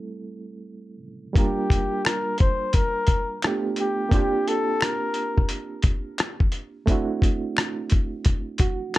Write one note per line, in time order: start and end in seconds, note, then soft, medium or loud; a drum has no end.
0.00 0.96 G3 medium
0.00 0.96 A3 medium
0.00 0.97 C4 medium
0.00 0.98 E4 medium
0.00 0.99 A4 medium
1.33 3.37 G3 medium
1.33 3.38 A#3 medium
1.33 3.39 D4 medium
1.33 kick loud
1.33 closed hi-hat medium
1.37 3.39 F4 medium
1.37 2.07 G4 medium
1.37 3.40 A#4 medium
1.70 kick medium
1.70 closed hi-hat medium
2.05 2.39 A#4 loud
2.05 finger snap medium
2.05 cross-stick loud
2.05 closed hi-hat medium
2.38 2.76 C5 medium
2.38 kick loud
2.38 closed hi-hat medium
2.73 3.43 A#4 loud
2.73 kick medium
2.73 closed hi-hat medium
3.07 kick medium
3.07 closed hi-hat medium
3.42 4.12 A3 medium
3.42 4.13 B3 medium
3.42 4.11 D4 medium
3.42 4.12 F4 soft
3.42 finger snap medium
3.42 cross-stick loud
3.42 closed hi-hat medium
3.47 4.14 G4 medium
3.76 4.50 G4 medium
3.76 closed hi-hat medium
4.09 6.82 A#3 medium
4.09 6.83 C4 medium
4.09 6.84 D4 medium
4.09 kick loud
4.09 closed hi-hat medium
4.14 6.84 F4 medium
4.14 6.85 G4 medium
4.48 4.84 A4 loud
4.48 closed hi-hat medium
4.81 5.51 A#4 medium
4.81 finger snap medium
4.81 cross-stick loud
4.81 closed hi-hat loud
5.14 closed hi-hat medium
5.38 kick medium
5.49 closed hi-hat medium
5.82 kick medium
5.82 closed hi-hat medium
6.18 finger snap medium
6.18 cross-stick loud
6.18 closed hi-hat medium
6.40 kick loud
6.52 closed hi-hat medium
6.86 8.98 A3 medium
6.86 8.98 C4 medium
6.86 8.98 D4 medium
6.86 kick loud
6.86 closed hi-hat medium
6.90 8.98 E4 medium
6.90 8.59 F#4 medium
7.22 kick medium
7.22 closed hi-hat medium
7.57 finger snap medium
7.57 cross-stick loud
7.57 closed hi-hat medium
7.90 kick medium
7.90 closed hi-hat medium
8.25 kick medium
8.25 closed hi-hat medium
8.58 8.93 F#4 medium
8.58 kick medium
8.58 closed hi-hat medium
8.94 finger snap medium
8.94 closed hi-hat medium